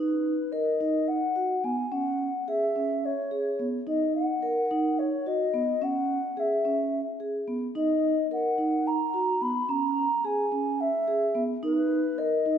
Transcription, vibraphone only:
0.00 0.31 D#4 medium
0.52 0.70 A#4 medium
0.80 1.15 D#4 medium
1.36 1.53 F#4 medium
1.64 1.81 B3 medium
1.92 2.26 C#4 medium
2.48 2.65 G#4 medium
2.76 3.10 C#4 medium
3.31 3.49 G#4 medium
3.59 3.77 B3 medium
3.87 4.21 D#4 medium
4.43 4.60 A#4 medium
4.71 5.05 D#4 medium
5.26 5.43 F#4 medium
5.54 5.71 B3 medium
5.82 6.16 C#4 medium
6.37 6.54 G#4 medium
6.65 6.99 C#4 medium
7.20 7.37 G#4 medium
7.48 7.65 B3 medium
7.75 8.10 D#4 medium
8.31 8.48 A#4 medium
8.58 8.93 D#4 medium
9.14 9.31 F#4 medium
9.42 9.59 B3 medium
9.69 10.03 C#4 medium
10.24 10.42 G#4 medium
10.52 10.86 C#4 medium
11.08 11.25 G#4 medium
11.35 11.52 B3 medium
11.63 11.97 D#4 medium
12.18 12.35 A#4 medium
12.46 12.58 D#4 medium

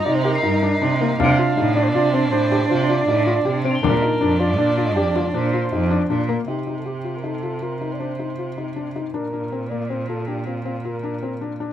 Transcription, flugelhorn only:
0.05 0.17 D5 medium
0.15 0.25 C5 medium
0.24 0.81 A#4 medium
1.20 1.72 F5 medium
1.75 1.85 D5 medium
1.83 1.90 C5 medium
1.88 2.13 D5 medium
2.31 2.67 C5 medium
2.69 2.87 C5 medium
2.88 3.60 D5 medium
3.83 4.42 A#4 medium
4.40 4.88 D5 medium
4.86 4.96 D#5 medium
4.97 5.36 D5 medium
5.34 6.10 C5 medium
6.49 6.77 G4 soft
6.78 6.87 A4 soft
6.86 7.18 G4 soft
7.17 7.25 A#4 soft
7.23 7.64 A4 medium
7.62 7.95 A#4 medium
7.93 8.01 D5 soft
8.00 8.57 C5 medium
9.14 9.71 A#4 medium
9.70 9.91 D5 medium
9.90 10.09 C5 medium
10.09 10.29 A4 medium
10.28 10.47 G4 medium
10.47 10.65 F4 medium
10.66 10.87 F4 medium
10.85 11.42 A#4 medium

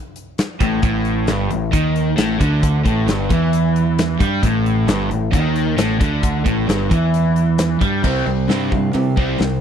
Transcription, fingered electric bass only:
0.61 0.82 A1 medium
0.83 1.25 A1 medium
1.28 1.49 G1 medium
1.50 1.71 A1 medium
1.73 2.15 D#2 loud
2.19 2.39 A1 medium
2.40 2.82 D2 loud
2.85 3.06 A1 medium
3.07 3.28 G1 medium
3.30 4.16 E2 medium
4.20 4.41 G2 medium
4.43 4.85 A1 loud
4.87 5.09 G1 loud
5.10 5.31 A1 medium
5.33 5.75 D#2 loud
5.77 5.98 A1 medium
6.01 6.42 D2 medium
6.46 6.67 A1 medium
6.68 6.89 G1 medium
6.91 7.77 E2 medium
7.81 8.02 G2 medium
8.04 8.24 C2 medium
8.26 8.47 C2 medium
8.49 8.90 G2 medium
8.95 9.15 C3 medium
9.17 9.38 C2 medium
9.40 9.60 C2 medium

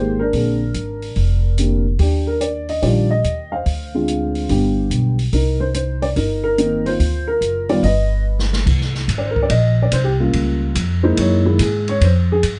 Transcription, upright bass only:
0.00 0.30 G#1 medium
0.33 0.72 A#1 medium
0.75 1.14 G#1 medium
1.16 1.96 F1 medium
1.99 2.79 D#2 medium
2.83 3.21 A#1 medium
3.24 3.63 D#2 medium
3.66 4.45 D2 medium
4.49 4.88 G1 medium
4.90 5.30 B1 medium
5.33 6.12 C2 medium
6.16 6.96 G1 medium
6.99 7.38 D2 medium
7.41 7.80 F#1 medium
7.83 8.63 G1 medium
8.66 9.07 C2 medium
9.08 9.49 G#1 medium
9.50 9.91 A#1 medium
9.92 10.32 C2 medium
10.33 10.74 C#2 medium
10.75 11.16 F2 medium
11.17 11.58 F#2 medium
11.59 12.00 G#2 medium
12.01 12.42 F2 medium
12.43 12.59 G2 medium

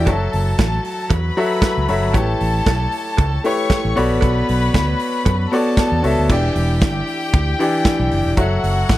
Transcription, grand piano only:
0.07 0.75 F#3 medium
0.07 0.75 F#4 medium
0.07 0.76 A4 medium
0.07 0.76 C#5 medium
0.07 0.76 E5 medium
1.37 1.71 F#3 medium
1.37 1.71 F#4 medium
1.37 1.71 A4 medium
1.37 1.71 C#5 medium
1.37 1.71 E5 loud
1.88 2.06 F#3 medium
1.88 2.06 F#4 medium
1.88 2.06 A4 medium
1.88 2.06 C#5 medium
1.88 2.07 E5 loud
2.13 2.82 A3 medium
2.13 2.82 E4 medium
2.13 2.82 G4 medium
2.13 2.82 B4 medium
2.13 2.83 C#5 medium
3.44 3.78 A3 loud
3.44 3.79 E4 medium
3.44 3.79 G4 medium
3.44 3.79 B4 medium
3.44 3.79 C#5 loud
3.96 4.79 B3 loud
3.96 4.80 F#4 medium
3.96 4.80 A4 medium
3.96 4.80 C#5 medium
3.96 4.80 D5 loud
5.52 5.86 B3 medium
5.52 5.86 F#4 medium
5.52 5.87 A4 medium
5.52 5.87 C#5 medium
5.52 5.87 D5 loud
6.03 6.21 B3 medium
6.03 6.21 F#4 medium
6.03 6.21 A4 medium
6.03 6.21 C#5 medium
6.03 6.22 E5 medium
6.30 6.98 E3 medium
6.30 6.99 D4 medium
6.30 6.98 E4 medium
6.30 6.99 G4 medium
6.30 6.99 D5 medium
7.59 8.10 E3 loud
7.59 8.11 D4 medium
7.59 8.11 E4 medium
7.59 8.11 G4 medium
7.59 8.11 D5 loud
8.37 8.98 F#3 medium
8.37 8.98 F#4 medium
8.37 8.98 A4 medium
8.37 8.98 C#5 medium
8.37 8.98 E5 medium

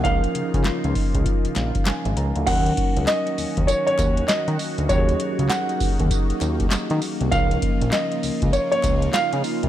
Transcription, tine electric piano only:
0.03 2.43 F3 medium
0.03 2.43 C#4 medium
0.03 2.43 D#4 medium
0.03 2.44 A#4 medium
1.57 1.85 F5 medium
1.87 2.15 G#5 medium
2.17 2.45 A#5 medium
2.46 4.85 F#3 medium
2.46 4.85 C#4 medium
2.46 4.86 D#4 medium
2.46 4.86 A#4 medium
4.89 7.28 F#3 medium
4.89 7.28 C#4 medium
4.89 7.28 D#4 medium
4.89 4.98 G4 medium
4.98 7.32 G#4 medium
7.31 9.69 F3 medium
7.31 9.69 C#4 medium
7.31 9.69 D#4 medium
7.31 9.69 A#4 medium

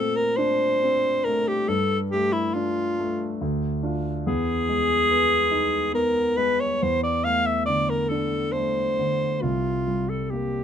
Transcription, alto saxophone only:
0.00 0.18 A4 loud
0.16 0.38 A#4 medium
0.36 1.26 C5 loud
1.25 1.49 A#4 medium
1.48 1.70 G4 medium
1.68 1.99 A4 loud
2.11 2.34 G4 medium
2.33 2.56 E4 medium
2.54 3.40 F4 medium
4.27 5.90 G#4 loud
5.95 6.38 A#4 medium
6.37 6.62 B4 medium
6.60 6.84 C#5 medium
6.82 7.03 C5 medium
7.03 7.26 D5 medium
7.24 7.48 F5 medium
7.46 7.65 E5 medium
7.66 7.91 D5 medium
7.90 8.10 A#4 medium
8.09 8.54 A4 medium
8.52 9.43 C5 medium
9.42 10.11 F4 medium
10.09 10.31 A4 medium
10.30 10.64 G4 medium

